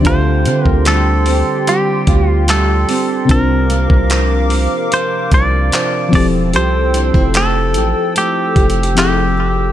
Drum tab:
HH |x-----x-----x-----o-----x-----x-----x-----o-----|x-----x-----x-----o-----x-----x-----x-----o-----|x-----x-----x-----x-----x-----x-x-x-x-----------|
CP |------------x-----------------------x-----------|------------x-----------------------x-----------|------------x-----------------------x-----------|
BD |o--------o--------------------o-----------------|o--------o--------------------o-----------o-----|---------o--------------------o-----------------|